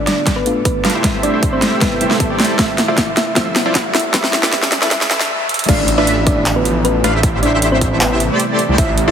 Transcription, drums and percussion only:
0.07 snare soft
0.07 closed hi-hat medium
0.27 kick medium
0.27 snare soft
0.27 closed hi-hat medium
0.46 closed hi-hat medium
0.65 kick loud
0.65 closed hi-hat medium
0.85 snare medium
0.85 closed hi-hat soft
0.90 closed hi-hat medium
1.04 kick loud
1.04 snare medium
1.04 closed hi-hat medium
1.23 closed hi-hat medium
1.43 kick medium
1.43 closed hi-hat medium
1.62 snare medium
1.62 closed hi-hat medium
1.81 kick medium
1.81 snare medium
1.81 closed hi-hat medium
2.01 closed hi-hat medium
2.11 snare medium
2.20 kick loud
2.20 closed hi-hat medium
2.40 snare medium
2.40 closed hi-hat soft
2.45 closed hi-hat medium
2.59 kick loud
2.59 snare medium
2.59 closed hi-hat medium
2.78 snare medium
2.78 closed hi-hat medium
2.98 kick medium
2.98 snare medium
2.98 closed hi-hat medium
3.17 snare medium
3.17 closed hi-hat medium
3.36 kick medium
3.36 snare medium
3.36 closed hi-hat medium
3.56 snare medium
3.56 closed hi-hat medium
3.75 kick loud
3.75 snare medium
3.75 closed hi-hat medium
3.95 snare medium
3.95 closed hi-hat soft
3.99 closed hi-hat medium
4.14 kick loud
4.14 snare loud
4.14 closed hi-hat medium
4.24 snare medium
4.33 snare medium
4.33 closed hi-hat medium
4.43 snare medium
4.52 kick loud
4.52 snare loud
4.52 closed hi-hat medium
4.62 snare medium
4.72 snare loud
4.72 closed hi-hat medium
4.82 snare medium
4.91 kick loud
4.91 snare loud
4.91 closed hi-hat medium
5.01 snare medium
5.11 snare loud
5.11 closed hi-hat medium
5.20 snare medium
5.49 closed hi-hat medium
5.54 closed hi-hat medium
5.59 closed hi-hat medium
5.64 closed hi-hat medium
5.69 kick loud
5.69 closed hi-hat medium
5.69 crash loud
5.88 closed hi-hat medium
6.07 closed hi-hat medium
6.27 kick loud
6.27 closed hi-hat medium
6.46 clap loud
6.46 closed hi-hat medium
6.65 closed hi-hat medium
6.85 closed hi-hat medium
7.04 closed hi-hat medium
7.23 kick loud
7.23 closed hi-hat medium
7.43 closed hi-hat medium
7.62 closed hi-hat medium
7.81 kick medium
7.81 closed hi-hat medium
8.01 clap loud
8.01 closed hi-hat medium
8.20 closed hi-hat medium
8.40 closed hi-hat medium
8.59 closed hi-hat medium
8.78 kick loud
8.78 closed hi-hat medium
8.98 closed hi-hat medium

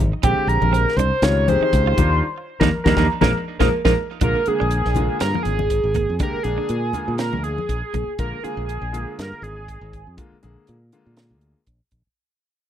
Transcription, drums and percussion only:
0.23 kick loud
0.23 closed hi-hat medium
0.49 closed hi-hat medium
0.62 high conga medium
0.74 closed hi-hat medium
0.88 snare soft
0.97 closed hi-hat medium
0.97 low conga medium
1.22 snare loud
1.22 closed hi-hat medium
1.48 closed hi-hat medium
1.48 high conga medium
1.73 kick medium
1.73 closed hi-hat medium
1.98 kick medium
1.98 closed hi-hat medium
1.98 high conga medium
1.98 low conga medium
2.61 kick medium
2.61 snare medium
2.61 high conga loud
2.86 kick medium
2.86 snare medium
2.86 high conga medium
2.97 kick medium
2.97 snare medium
2.97 high conga medium
3.21 kick medium
3.21 snare medium
3.21 high conga loud
3.60 kick medium
3.60 snare medium
3.60 high conga medium
3.85 kick medium
3.85 snare medium
3.85 high conga medium
4.21 kick loud
4.21 closed hi-hat medium
4.21 low conga medium
4.46 closed hi-hat soft
4.71 closed hi-hat medium
4.85 snare soft
4.95 closed hi-hat medium
4.95 low conga medium
5.20 snare loud
5.20 closed hi-hat medium
5.34 high conga medium
5.45 closed hi-hat medium
5.59 high conga medium
5.70 kick medium
5.70 closed hi-hat medium
5.94 kick medium
5.94 closed hi-hat soft
5.94 low conga medium
6.19 kick medium
6.19 closed hi-hat medium
6.19 low conga medium
6.44 closed hi-hat medium
6.69 closed hi-hat medium
6.93 closed hi-hat soft
6.93 low conga medium
7.18 snare medium
7.18 closed hi-hat medium
7.33 high conga medium
7.44 closed hi-hat medium
7.58 high conga medium
7.69 kick medium
7.69 closed hi-hat medium
7.94 kick medium
7.94 closed hi-hat soft
7.94 low conga medium
8.19 kick medium
8.19 closed hi-hat medium
8.44 closed hi-hat medium
8.69 closed hi-hat medium
8.94 closed hi-hat medium
9.19 snare medium
9.19 closed hi-hat medium
9.44 closed hi-hat medium
9.68 kick medium
9.68 closed hi-hat medium
9.93 kick medium
9.93 closed hi-hat soft
10.18 kick medium
10.18 closed hi-hat medium
10.43 closed hi-hat soft
10.67 closed hi-hat medium
10.92 closed hi-hat soft
11.17 snare medium
11.17 closed hi-hat medium
11.41 closed hi-hat soft
11.67 kick medium
11.67 closed hi-hat medium
11.91 kick medium
11.91 closed hi-hat soft

